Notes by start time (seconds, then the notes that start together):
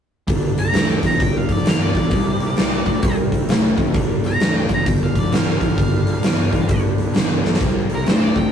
0.27 G1 G2 D3 G3 D4 F4 B4, kick, open hi-hat
0.57 G1 A#5, open hi-hat
0.73 D2 G2 E3, snare, open hi-hat
0.90 G5
1.02 G1 G2 E3 A#5, kick, snare, open hi-hat
1.19 G1 G2 D3 G5, kick, open hi-hat
1.37 F5
1.49 F1 D5, kick, open hi-hat
1.65 G1 G2 E3 F5, snare, open hi-hat
1.83 D5
1.94 G1 G2 E3, kick, open hi-hat
2.11 C2 C3 G3 G#3 C#4 F4 B4, kick, open hi-hat
2.26 G3 C4 E4 A#4
2.40 C2, open hi-hat
2.57 C2 C3 A3, snare, open hi-hat
2.86 C2 C3 A3, kick, open hi-hat
3.03 C2 C3 G3, kick, open hi-hat
3.32 C2, kick, open hi-hat
3.47 C2 C3 A3, snare, open hi-hat
3.77 A1 C3 A3, kick, open hi-hat
3.94 G1 G2 D3 G3 D4 F4 B4, kick, open hi-hat
4.23 G1, open hi-hat
4.27 A#5
4.39 D2 G2 E3, snare, open hi-hat
4.57 G5
4.69 G1 G2 E3, kick, open hi-hat
4.74 A#5
4.86 G1 G2 D3 G5, kick, open hi-hat
5.03 F5
5.15 F1 D5, kick, open hi-hat
5.32 G1 G2 E3 F5, snare, open hi-hat
5.50 F5
5.60 G1 G2 E3, kick, open hi-hat
5.76 G1 G2 D3, kick, open hi-hat
6.06 G1, open hi-hat
6.23 G1 G2 E3, snare, open hi-hat
6.51 G1 G2 E3, kick, open hi-hat
6.68 G1 G2 D3, kick, open hi-hat
6.98 G1, open hi-hat
7.14 G1 G2 E3, snare, open hi-hat
7.43 B1 G2 E3, snare
7.54 snare
7.60 C2 C3 G3 C4 E4 A#4, kick, open hi-hat
7.90 C2, open hi-hat
7.95 A#4
8.06 G2 C3 A3 C5, snare, open hi-hat
8.23 D5
8.35 C2 C3 A3 G5, kick, open hi-hat